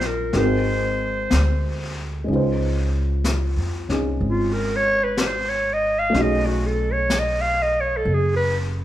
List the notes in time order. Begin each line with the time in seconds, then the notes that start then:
Already playing: A#1 F#3 C#4 D#4 F4 A#4
0.01 snare
0.06 A#4
0.33 G#1 G#3 C4 D#4 F#4 A#4, brush sweep, snare
0.38 C5
1.31 D2, brush sweep, snare, hi-hat pedal
2.24 G#3 C#4, brush sweep
2.28 C#2 D#4
2.32 F4 C5
3.24 brush sweep, snare, hi-hat pedal
3.56 F2
3.89 C2 C#4 D#4 G#4, snare
4.21 G#1, brush sweep
4.28 F4
4.53 A#4
4.76 C#5
5.03 B4
5.17 brush sweep, snare, hi-hat pedal
5.27 C5
5.49 C#5
5.73 D#5
5.99 F5
6.10 A3 C#4
6.14 B1 D#4 F#4, brush sweep, snare
6.21 G#4 D#5
6.46 F#4
6.66 A4
6.93 C#5
7.10 brush sweep, snare, hi-hat pedal
7.19 D#5
7.41 F5
7.62 D#5
7.80 C#5
7.97 A4
8.05 F#1, brush sweep
8.14 G#4
8.36 B4